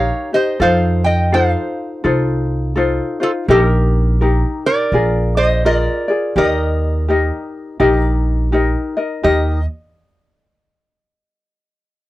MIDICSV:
0, 0, Header, 1, 4, 480
1, 0, Start_track
1, 0, Key_signature, -3, "major"
1, 0, Tempo, 720288
1, 399, Time_signature, 4, 2, 24, 8
1, 8062, End_track
2, 0, Start_track
2, 0, Title_t, "Resonator guitar played with a steel bar"
2, 0, Program_c, 0, 25
2, 0, Note_on_c, 0, 73, 71
2, 0, Note_on_c, 0, 77, 97
2, 199, Note_off_c, 0, 73, 0
2, 223, Note_off_c, 0, 77, 0
2, 227, Note_on_c, 0, 75, 92
2, 236, Note_on_c, 0, 72, 67
2, 399, Note_off_c, 0, 72, 0
2, 408, Note_off_c, 0, 75, 0
2, 411, Note_on_c, 0, 77, 98
2, 417, Note_on_c, 0, 72, 74
2, 679, Note_off_c, 0, 72, 0
2, 696, Note_on_c, 0, 79, 83
2, 704, Note_off_c, 0, 77, 0
2, 707, Note_on_c, 0, 75, 65
2, 874, Note_off_c, 0, 75, 0
2, 887, Note_off_c, 0, 79, 0
2, 892, Note_on_c, 0, 77, 89
2, 896, Note_on_c, 0, 72, 68
2, 1630, Note_off_c, 0, 77, 0
2, 1632, Note_off_c, 0, 72, 0
2, 2152, Note_on_c, 0, 65, 66
2, 2153, Note_on_c, 0, 69, 80
2, 2199, Note_off_c, 0, 69, 0
2, 2200, Note_off_c, 0, 65, 0
2, 2337, Note_on_c, 0, 69, 88
2, 2338, Note_on_c, 0, 67, 70
2, 2410, Note_off_c, 0, 69, 0
2, 2410, Note_on_c, 0, 70, 88
2, 3073, Note_off_c, 0, 67, 0
2, 3101, Note_off_c, 0, 70, 0
2, 3108, Note_on_c, 0, 70, 77
2, 3108, Note_on_c, 0, 74, 96
2, 3552, Note_off_c, 0, 70, 0
2, 3580, Note_on_c, 0, 75, 93
2, 3583, Note_off_c, 0, 74, 0
2, 3586, Note_on_c, 0, 72, 74
2, 3753, Note_off_c, 0, 72, 0
2, 3768, Note_off_c, 0, 75, 0
2, 3771, Note_on_c, 0, 70, 74
2, 3773, Note_on_c, 0, 74, 90
2, 4217, Note_off_c, 0, 70, 0
2, 4217, Note_off_c, 0, 74, 0
2, 4250, Note_on_c, 0, 75, 84
2, 4253, Note_on_c, 0, 70, 79
2, 5316, Note_off_c, 0, 75, 0
2, 5316, Note_on_c, 0, 74, 84
2, 5949, Note_off_c, 0, 74, 0
2, 5950, Note_off_c, 0, 70, 0
2, 6159, Note_on_c, 0, 75, 83
2, 6430, Note_off_c, 0, 75, 0
2, 8062, End_track
3, 0, Start_track
3, 0, Title_t, "Ukulele"
3, 0, Program_c, 1, 24
3, 0, Note_on_c, 1, 63, 62
3, 0, Note_on_c, 1, 67, 67
3, 0, Note_on_c, 1, 70, 50
3, 0, Note_on_c, 1, 73, 66
3, 211, Note_off_c, 1, 67, 0
3, 211, Note_off_c, 1, 70, 0
3, 215, Note_off_c, 1, 63, 0
3, 219, Note_off_c, 1, 73, 0
3, 219, Note_on_c, 1, 67, 45
3, 225, Note_on_c, 1, 63, 47
3, 394, Note_off_c, 1, 63, 0
3, 395, Note_off_c, 1, 67, 0
3, 397, Note_on_c, 1, 69, 74
3, 402, Note_on_c, 1, 63, 90
3, 406, Note_on_c, 1, 65, 83
3, 407, Note_on_c, 1, 72, 86
3, 874, Note_off_c, 1, 69, 0
3, 882, Note_off_c, 1, 65, 0
3, 882, Note_on_c, 1, 69, 58
3, 883, Note_off_c, 1, 72, 0
3, 884, Note_off_c, 1, 63, 0
3, 887, Note_on_c, 1, 63, 62
3, 888, Note_on_c, 1, 65, 71
3, 894, Note_on_c, 1, 72, 67
3, 1350, Note_off_c, 1, 69, 0
3, 1352, Note_off_c, 1, 65, 0
3, 1358, Note_on_c, 1, 69, 70
3, 1359, Note_off_c, 1, 63, 0
3, 1360, Note_on_c, 1, 65, 76
3, 1362, Note_off_c, 1, 72, 0
3, 1362, Note_on_c, 1, 63, 83
3, 1370, Note_on_c, 1, 72, 82
3, 1828, Note_off_c, 1, 69, 0
3, 1836, Note_on_c, 1, 69, 73
3, 1839, Note_off_c, 1, 63, 0
3, 1839, Note_off_c, 1, 65, 0
3, 1841, Note_off_c, 1, 72, 0
3, 1842, Note_on_c, 1, 63, 74
3, 1846, Note_on_c, 1, 65, 82
3, 1849, Note_on_c, 1, 72, 70
3, 2124, Note_off_c, 1, 72, 0
3, 2129, Note_off_c, 1, 69, 0
3, 2131, Note_off_c, 1, 65, 0
3, 2132, Note_off_c, 1, 63, 0
3, 2132, Note_on_c, 1, 72, 50
3, 2139, Note_on_c, 1, 65, 50
3, 2147, Note_on_c, 1, 63, 45
3, 2319, Note_off_c, 1, 72, 0
3, 2321, Note_off_c, 1, 63, 0
3, 2321, Note_off_c, 1, 65, 0
3, 2324, Note_on_c, 1, 70, 75
3, 2329, Note_on_c, 1, 63, 80
3, 2330, Note_on_c, 1, 67, 91
3, 2331, Note_on_c, 1, 75, 82
3, 2802, Note_off_c, 1, 75, 0
3, 2803, Note_off_c, 1, 63, 0
3, 2803, Note_off_c, 1, 67, 0
3, 2805, Note_off_c, 1, 70, 0
3, 2805, Note_on_c, 1, 70, 64
3, 2811, Note_on_c, 1, 63, 71
3, 2812, Note_on_c, 1, 67, 70
3, 3282, Note_off_c, 1, 70, 0
3, 3284, Note_off_c, 1, 63, 0
3, 3284, Note_off_c, 1, 67, 0
3, 3285, Note_on_c, 1, 70, 73
3, 3287, Note_on_c, 1, 65, 72
3, 3293, Note_on_c, 1, 68, 82
3, 3759, Note_off_c, 1, 65, 0
3, 3762, Note_off_c, 1, 68, 0
3, 3765, Note_off_c, 1, 70, 0
3, 3765, Note_on_c, 1, 70, 56
3, 3767, Note_on_c, 1, 65, 58
3, 3773, Note_on_c, 1, 68, 55
3, 3774, Note_on_c, 1, 74, 64
3, 4044, Note_off_c, 1, 74, 0
3, 4052, Note_on_c, 1, 74, 58
3, 4053, Note_off_c, 1, 70, 0
3, 4054, Note_off_c, 1, 65, 0
3, 4054, Note_off_c, 1, 68, 0
3, 4062, Note_on_c, 1, 68, 53
3, 4064, Note_on_c, 1, 65, 42
3, 4238, Note_off_c, 1, 74, 0
3, 4240, Note_on_c, 1, 67, 83
3, 4243, Note_off_c, 1, 68, 0
3, 4244, Note_off_c, 1, 65, 0
3, 4248, Note_on_c, 1, 63, 86
3, 4249, Note_on_c, 1, 75, 92
3, 4250, Note_on_c, 1, 70, 94
3, 4718, Note_off_c, 1, 67, 0
3, 4721, Note_on_c, 1, 67, 63
3, 4724, Note_off_c, 1, 63, 0
3, 4727, Note_on_c, 1, 63, 62
3, 4728, Note_off_c, 1, 70, 0
3, 4730, Note_off_c, 1, 75, 0
3, 4731, Note_on_c, 1, 70, 63
3, 4733, Note_on_c, 1, 75, 66
3, 5193, Note_off_c, 1, 63, 0
3, 5193, Note_off_c, 1, 67, 0
3, 5195, Note_on_c, 1, 67, 88
3, 5196, Note_on_c, 1, 63, 92
3, 5198, Note_off_c, 1, 75, 0
3, 5199, Note_off_c, 1, 70, 0
3, 5200, Note_on_c, 1, 75, 96
3, 5202, Note_on_c, 1, 70, 83
3, 5676, Note_off_c, 1, 67, 0
3, 5679, Note_on_c, 1, 67, 60
3, 5680, Note_off_c, 1, 63, 0
3, 5683, Note_on_c, 1, 63, 73
3, 5689, Note_off_c, 1, 70, 0
3, 5690, Note_off_c, 1, 75, 0
3, 5692, Note_on_c, 1, 70, 74
3, 5692, Note_on_c, 1, 75, 72
3, 5968, Note_off_c, 1, 75, 0
3, 5970, Note_off_c, 1, 67, 0
3, 5972, Note_off_c, 1, 63, 0
3, 5974, Note_off_c, 1, 70, 0
3, 5976, Note_on_c, 1, 75, 57
3, 5982, Note_on_c, 1, 70, 51
3, 5992, Note_on_c, 1, 63, 46
3, 6150, Note_off_c, 1, 63, 0
3, 6154, Note_on_c, 1, 67, 82
3, 6158, Note_off_c, 1, 70, 0
3, 6158, Note_on_c, 1, 63, 72
3, 6160, Note_off_c, 1, 75, 0
3, 6166, Note_on_c, 1, 70, 85
3, 6170, Note_on_c, 1, 75, 86
3, 6389, Note_off_c, 1, 67, 0
3, 6391, Note_off_c, 1, 63, 0
3, 6395, Note_off_c, 1, 70, 0
3, 6397, Note_off_c, 1, 75, 0
3, 8062, End_track
4, 0, Start_track
4, 0, Title_t, "Upright bass"
4, 0, Program_c, 2, 32
4, 399, Note_on_c, 2, 41, 98
4, 1022, Note_off_c, 2, 41, 0
4, 1363, Note_on_c, 2, 36, 80
4, 1985, Note_off_c, 2, 36, 0
4, 2322, Note_on_c, 2, 34, 115
4, 2944, Note_off_c, 2, 34, 0
4, 3278, Note_on_c, 2, 34, 91
4, 3901, Note_off_c, 2, 34, 0
4, 4236, Note_on_c, 2, 39, 101
4, 4860, Note_off_c, 2, 39, 0
4, 5197, Note_on_c, 2, 34, 91
4, 5821, Note_off_c, 2, 34, 0
4, 6160, Note_on_c, 2, 39, 92
4, 6430, Note_off_c, 2, 39, 0
4, 8062, End_track
0, 0, End_of_file